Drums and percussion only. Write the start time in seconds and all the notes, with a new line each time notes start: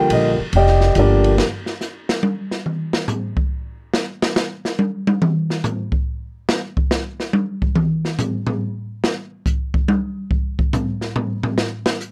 0.10 kick, ride
0.53 kick, ride
0.67 snare
0.81 snare
0.95 kick, hi-hat pedal, ride
1.24 ride
1.38 snare
1.66 snare
1.81 snare, hi-hat pedal
2.09 snare
2.23 high tom
2.51 snare
2.66 mid tom
2.93 snare
3.08 floor tom, hi-hat pedal
3.37 kick
3.94 snare
4.22 snare
4.36 snare, hi-hat pedal
4.65 snare
4.79 high tom
5.07 high tom
5.22 mid tom
5.50 snare
5.64 floor tom, hi-hat pedal
5.92 kick
6.49 snare
6.77 kick
6.91 snare, hi-hat pedal
7.20 snare
7.33 high tom
7.62 kick
7.75 mid tom
8.05 snare
8.19 floor tom, hi-hat pedal
8.47 floor tom
9.04 snare
9.46 kick, hi-hat pedal
9.74 kick
9.88 high tom
10.31 kick
10.59 kick
10.73 floor tom, hi-hat pedal
11.01 snare
11.16 floor tom
11.43 floor tom
11.58 snare
11.86 snare
12.00 hi-hat pedal